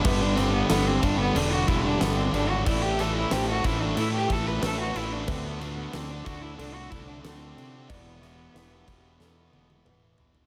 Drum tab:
CC |x-x-x-x-x-x-x-x-|x-x-x-x-x-x-x-x-|x-x-x-x-x-x-x-x-|x-x-x-x---------|
SD |--o-o-------o---|--o-o-------o---|----o-------o---|--o-o---o-------|
T1 |----------------|----------------|----------------|----------oo----|
T2 |----------------|----------------|----------------|------------o---|
FT |----------------|----------------|----------------|--------------oo|
BD |o-----o---o-----|o-----o---o-----|o-----o---o-----|o-----o---------|